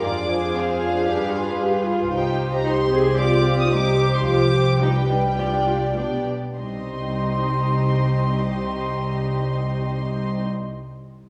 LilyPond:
<<
  \new Staff \with { instrumentName = "Violin section" } { \time 4/4 \key c \minor \tempo 4 = 105 d'''4 f''2~ f''8 r8 | g''8. bes''16 c'''4 d'''8. ees'''16 d'''8. c'''16 | d'''4 g''2~ g''8 r8 | c'''1~ |
c'''1 | }
  \new Staff \with { instrumentName = "Violin section" } { \time 4/4 \key c \minor << { d''8 c''4. b'2 | c''2 d''4 c''4~ | c''4 b'4 d''4 d''8 r8 | ees''1~ |
ees''1 | } \\ { aes'1 | g'2 g'4 g'4 | g'2 f'8 g'8 g'8 r8 | g'1~ |
g'1 | } >> }
  \new Staff \with { instrumentName = "Cello section" } { \time 4/4 \key c \minor f'8 aes'4. g'8 f'4.~ | f'4 ees'8 aes'8 g'4 g'4~ | g'4 ees'8 d'8 g'8 f'8 d'8 r8 | c,1~ |
c,1 | }
  \new Staff \with { instrumentName = "Viola section" } { \time 4/4 \key c \minor << { f'2 d'4 g'8 f'8 | ees'4 g'4 f'4 ees'4 | f'8 g'8 d'8 ees'8 d'4 d'8 r8 | ees'1~ |
ees'1 | } \\ { d'4 c'8 d'8 d'2~ | d'4 ees'8 c'4. g4 | f4 g2 b8 r8 | c'1~ |
c'1 | } >> }
  \new Staff \with { instrumentName = "Double bass section" } { \clef bass \time 4/4 \key c \minor f,2 g,2 | c,1 | c,2. b,,8 r8 | c,1~ |
c,1 | }
>>